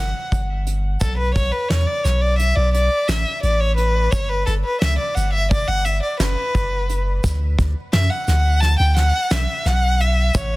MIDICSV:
0, 0, Header, 1, 4, 480
1, 0, Start_track
1, 0, Tempo, 691244
1, 703, Time_signature, 9, 3, 24, 8
1, 7336, End_track
2, 0, Start_track
2, 0, Title_t, "Violin"
2, 0, Program_c, 0, 40
2, 0, Note_on_c, 0, 78, 97
2, 196, Note_off_c, 0, 78, 0
2, 702, Note_on_c, 0, 69, 72
2, 812, Note_off_c, 0, 69, 0
2, 816, Note_on_c, 0, 71, 76
2, 929, Note_off_c, 0, 71, 0
2, 934, Note_on_c, 0, 73, 81
2, 1054, Note_on_c, 0, 71, 73
2, 1064, Note_off_c, 0, 73, 0
2, 1172, Note_on_c, 0, 73, 82
2, 1182, Note_off_c, 0, 71, 0
2, 1294, Note_on_c, 0, 74, 84
2, 1304, Note_off_c, 0, 73, 0
2, 1414, Note_on_c, 0, 73, 73
2, 1424, Note_off_c, 0, 74, 0
2, 1535, Note_on_c, 0, 74, 85
2, 1546, Note_off_c, 0, 73, 0
2, 1651, Note_off_c, 0, 74, 0
2, 1656, Note_on_c, 0, 76, 80
2, 1774, Note_on_c, 0, 74, 80
2, 1784, Note_off_c, 0, 76, 0
2, 1896, Note_off_c, 0, 74, 0
2, 1900, Note_on_c, 0, 74, 87
2, 2139, Note_on_c, 0, 76, 85
2, 2149, Note_off_c, 0, 74, 0
2, 2376, Note_off_c, 0, 76, 0
2, 2380, Note_on_c, 0, 74, 79
2, 2500, Note_on_c, 0, 73, 86
2, 2511, Note_off_c, 0, 74, 0
2, 2610, Note_off_c, 0, 73, 0
2, 2614, Note_on_c, 0, 71, 78
2, 2854, Note_on_c, 0, 73, 78
2, 2864, Note_off_c, 0, 71, 0
2, 2978, Note_on_c, 0, 71, 84
2, 2989, Note_off_c, 0, 73, 0
2, 3093, Note_off_c, 0, 71, 0
2, 3098, Note_on_c, 0, 69, 77
2, 3153, Note_off_c, 0, 69, 0
2, 3225, Note_on_c, 0, 71, 77
2, 3337, Note_off_c, 0, 71, 0
2, 3342, Note_on_c, 0, 76, 103
2, 3455, Note_off_c, 0, 76, 0
2, 3462, Note_on_c, 0, 74, 76
2, 3576, Note_on_c, 0, 78, 79
2, 3587, Note_off_c, 0, 74, 0
2, 3698, Note_off_c, 0, 78, 0
2, 3702, Note_on_c, 0, 76, 91
2, 3816, Note_off_c, 0, 76, 0
2, 3830, Note_on_c, 0, 74, 93
2, 3943, Note_on_c, 0, 78, 92
2, 3953, Note_off_c, 0, 74, 0
2, 4060, Note_on_c, 0, 76, 83
2, 4070, Note_off_c, 0, 78, 0
2, 4180, Note_off_c, 0, 76, 0
2, 4184, Note_on_c, 0, 74, 78
2, 4297, Note_off_c, 0, 74, 0
2, 4305, Note_on_c, 0, 71, 83
2, 4999, Note_off_c, 0, 71, 0
2, 5508, Note_on_c, 0, 76, 88
2, 5623, Note_on_c, 0, 78, 80
2, 5634, Note_off_c, 0, 76, 0
2, 5738, Note_off_c, 0, 78, 0
2, 5742, Note_on_c, 0, 78, 81
2, 5975, Note_on_c, 0, 81, 101
2, 5986, Note_off_c, 0, 78, 0
2, 6098, Note_off_c, 0, 81, 0
2, 6102, Note_on_c, 0, 79, 87
2, 6216, Note_off_c, 0, 79, 0
2, 6225, Note_on_c, 0, 78, 97
2, 6467, Note_on_c, 0, 76, 84
2, 6478, Note_off_c, 0, 78, 0
2, 6709, Note_on_c, 0, 78, 87
2, 6719, Note_off_c, 0, 76, 0
2, 6950, Note_on_c, 0, 76, 77
2, 6960, Note_off_c, 0, 78, 0
2, 7193, Note_on_c, 0, 73, 77
2, 7203, Note_off_c, 0, 76, 0
2, 7336, Note_off_c, 0, 73, 0
2, 7336, End_track
3, 0, Start_track
3, 0, Title_t, "Sub bass"
3, 0, Program_c, 1, 38
3, 0, Note_on_c, 1, 31, 94
3, 93, Note_off_c, 1, 31, 0
3, 221, Note_on_c, 1, 31, 92
3, 674, Note_off_c, 1, 31, 0
3, 702, Note_on_c, 1, 35, 92
3, 927, Note_off_c, 1, 35, 0
3, 941, Note_on_c, 1, 35, 94
3, 1054, Note_off_c, 1, 35, 0
3, 1180, Note_on_c, 1, 40, 98
3, 1294, Note_off_c, 1, 40, 0
3, 1422, Note_on_c, 1, 35, 87
3, 1759, Note_off_c, 1, 35, 0
3, 1781, Note_on_c, 1, 35, 86
3, 2007, Note_off_c, 1, 35, 0
3, 2142, Note_on_c, 1, 33, 93
3, 2256, Note_off_c, 1, 33, 0
3, 2383, Note_on_c, 1, 33, 86
3, 2837, Note_off_c, 1, 33, 0
3, 2863, Note_on_c, 1, 31, 85
3, 3089, Note_off_c, 1, 31, 0
3, 3106, Note_on_c, 1, 31, 106
3, 3218, Note_off_c, 1, 31, 0
3, 3346, Note_on_c, 1, 37, 94
3, 3458, Note_off_c, 1, 37, 0
3, 3587, Note_on_c, 1, 31, 85
3, 3923, Note_off_c, 1, 31, 0
3, 3945, Note_on_c, 1, 31, 82
3, 4170, Note_off_c, 1, 31, 0
3, 4304, Note_on_c, 1, 30, 88
3, 4418, Note_off_c, 1, 30, 0
3, 4546, Note_on_c, 1, 30, 84
3, 4999, Note_off_c, 1, 30, 0
3, 5026, Note_on_c, 1, 38, 91
3, 5251, Note_off_c, 1, 38, 0
3, 5267, Note_on_c, 1, 38, 97
3, 5379, Note_off_c, 1, 38, 0
3, 5506, Note_on_c, 1, 42, 104
3, 5618, Note_off_c, 1, 42, 0
3, 5748, Note_on_c, 1, 38, 92
3, 6084, Note_off_c, 1, 38, 0
3, 6109, Note_on_c, 1, 38, 92
3, 6332, Note_off_c, 1, 38, 0
3, 6464, Note_on_c, 1, 35, 79
3, 6577, Note_off_c, 1, 35, 0
3, 6705, Note_on_c, 1, 35, 86
3, 7157, Note_off_c, 1, 35, 0
3, 7185, Note_on_c, 1, 33, 94
3, 7336, Note_off_c, 1, 33, 0
3, 7336, End_track
4, 0, Start_track
4, 0, Title_t, "Drums"
4, 222, Note_on_c, 9, 36, 68
4, 223, Note_on_c, 9, 82, 20
4, 224, Note_on_c, 9, 42, 59
4, 292, Note_off_c, 9, 36, 0
4, 292, Note_off_c, 9, 82, 0
4, 294, Note_off_c, 9, 42, 0
4, 463, Note_on_c, 9, 42, 58
4, 532, Note_off_c, 9, 42, 0
4, 699, Note_on_c, 9, 82, 63
4, 702, Note_on_c, 9, 42, 72
4, 703, Note_on_c, 9, 36, 90
4, 769, Note_off_c, 9, 82, 0
4, 771, Note_off_c, 9, 42, 0
4, 772, Note_off_c, 9, 36, 0
4, 941, Note_on_c, 9, 42, 58
4, 942, Note_on_c, 9, 82, 18
4, 943, Note_on_c, 9, 36, 78
4, 1010, Note_off_c, 9, 42, 0
4, 1011, Note_off_c, 9, 82, 0
4, 1012, Note_off_c, 9, 36, 0
4, 1183, Note_on_c, 9, 38, 104
4, 1183, Note_on_c, 9, 42, 80
4, 1253, Note_off_c, 9, 38, 0
4, 1253, Note_off_c, 9, 42, 0
4, 1423, Note_on_c, 9, 38, 31
4, 1423, Note_on_c, 9, 42, 54
4, 1423, Note_on_c, 9, 82, 49
4, 1492, Note_off_c, 9, 38, 0
4, 1492, Note_off_c, 9, 42, 0
4, 1493, Note_off_c, 9, 82, 0
4, 1663, Note_on_c, 9, 42, 72
4, 1664, Note_on_c, 9, 82, 19
4, 1733, Note_off_c, 9, 42, 0
4, 1734, Note_off_c, 9, 82, 0
4, 1906, Note_on_c, 9, 42, 60
4, 1975, Note_off_c, 9, 42, 0
4, 2145, Note_on_c, 9, 38, 87
4, 2145, Note_on_c, 9, 42, 76
4, 2145, Note_on_c, 9, 82, 68
4, 2214, Note_off_c, 9, 38, 0
4, 2214, Note_off_c, 9, 42, 0
4, 2214, Note_off_c, 9, 82, 0
4, 2383, Note_on_c, 9, 42, 58
4, 2387, Note_on_c, 9, 82, 22
4, 2452, Note_off_c, 9, 42, 0
4, 2457, Note_off_c, 9, 82, 0
4, 2622, Note_on_c, 9, 42, 60
4, 2692, Note_off_c, 9, 42, 0
4, 2862, Note_on_c, 9, 42, 58
4, 2864, Note_on_c, 9, 36, 92
4, 2865, Note_on_c, 9, 82, 59
4, 2932, Note_off_c, 9, 42, 0
4, 2934, Note_off_c, 9, 36, 0
4, 2934, Note_off_c, 9, 82, 0
4, 3104, Note_on_c, 9, 42, 56
4, 3173, Note_off_c, 9, 42, 0
4, 3345, Note_on_c, 9, 38, 103
4, 3345, Note_on_c, 9, 42, 78
4, 3346, Note_on_c, 9, 82, 19
4, 3415, Note_off_c, 9, 38, 0
4, 3415, Note_off_c, 9, 42, 0
4, 3415, Note_off_c, 9, 82, 0
4, 3587, Note_on_c, 9, 42, 60
4, 3590, Note_on_c, 9, 82, 46
4, 3656, Note_off_c, 9, 42, 0
4, 3660, Note_off_c, 9, 82, 0
4, 3826, Note_on_c, 9, 36, 106
4, 3826, Note_on_c, 9, 82, 17
4, 3827, Note_on_c, 9, 42, 70
4, 3895, Note_off_c, 9, 36, 0
4, 3896, Note_off_c, 9, 42, 0
4, 3896, Note_off_c, 9, 82, 0
4, 4065, Note_on_c, 9, 42, 65
4, 4065, Note_on_c, 9, 82, 17
4, 4134, Note_off_c, 9, 42, 0
4, 4135, Note_off_c, 9, 82, 0
4, 4304, Note_on_c, 9, 38, 100
4, 4304, Note_on_c, 9, 42, 76
4, 4308, Note_on_c, 9, 82, 65
4, 4374, Note_off_c, 9, 38, 0
4, 4374, Note_off_c, 9, 42, 0
4, 4377, Note_off_c, 9, 82, 0
4, 4547, Note_on_c, 9, 36, 67
4, 4547, Note_on_c, 9, 42, 57
4, 4551, Note_on_c, 9, 82, 20
4, 4616, Note_off_c, 9, 36, 0
4, 4616, Note_off_c, 9, 42, 0
4, 4620, Note_off_c, 9, 82, 0
4, 4788, Note_on_c, 9, 42, 66
4, 4791, Note_on_c, 9, 82, 19
4, 4857, Note_off_c, 9, 42, 0
4, 4861, Note_off_c, 9, 82, 0
4, 5026, Note_on_c, 9, 42, 73
4, 5027, Note_on_c, 9, 36, 83
4, 5028, Note_on_c, 9, 82, 60
4, 5095, Note_off_c, 9, 42, 0
4, 5096, Note_off_c, 9, 36, 0
4, 5097, Note_off_c, 9, 82, 0
4, 5267, Note_on_c, 9, 36, 79
4, 5270, Note_on_c, 9, 42, 59
4, 5271, Note_on_c, 9, 82, 19
4, 5337, Note_off_c, 9, 36, 0
4, 5340, Note_off_c, 9, 42, 0
4, 5341, Note_off_c, 9, 82, 0
4, 5507, Note_on_c, 9, 38, 104
4, 5507, Note_on_c, 9, 42, 79
4, 5577, Note_off_c, 9, 38, 0
4, 5577, Note_off_c, 9, 42, 0
4, 5748, Note_on_c, 9, 82, 49
4, 5750, Note_on_c, 9, 38, 33
4, 5750, Note_on_c, 9, 42, 58
4, 5818, Note_off_c, 9, 82, 0
4, 5819, Note_off_c, 9, 38, 0
4, 5819, Note_off_c, 9, 42, 0
4, 5986, Note_on_c, 9, 82, 19
4, 5989, Note_on_c, 9, 38, 30
4, 5989, Note_on_c, 9, 42, 67
4, 6056, Note_off_c, 9, 82, 0
4, 6059, Note_off_c, 9, 38, 0
4, 6059, Note_off_c, 9, 42, 0
4, 6225, Note_on_c, 9, 38, 35
4, 6225, Note_on_c, 9, 42, 60
4, 6295, Note_off_c, 9, 38, 0
4, 6295, Note_off_c, 9, 42, 0
4, 6464, Note_on_c, 9, 82, 61
4, 6465, Note_on_c, 9, 38, 93
4, 6465, Note_on_c, 9, 42, 73
4, 6533, Note_off_c, 9, 82, 0
4, 6535, Note_off_c, 9, 38, 0
4, 6535, Note_off_c, 9, 42, 0
4, 6705, Note_on_c, 9, 82, 21
4, 6707, Note_on_c, 9, 38, 30
4, 6707, Note_on_c, 9, 42, 56
4, 6774, Note_off_c, 9, 82, 0
4, 6777, Note_off_c, 9, 38, 0
4, 6777, Note_off_c, 9, 42, 0
4, 6945, Note_on_c, 9, 42, 61
4, 7015, Note_off_c, 9, 42, 0
4, 7183, Note_on_c, 9, 82, 67
4, 7186, Note_on_c, 9, 36, 97
4, 7187, Note_on_c, 9, 42, 64
4, 7252, Note_off_c, 9, 82, 0
4, 7255, Note_off_c, 9, 36, 0
4, 7257, Note_off_c, 9, 42, 0
4, 7336, End_track
0, 0, End_of_file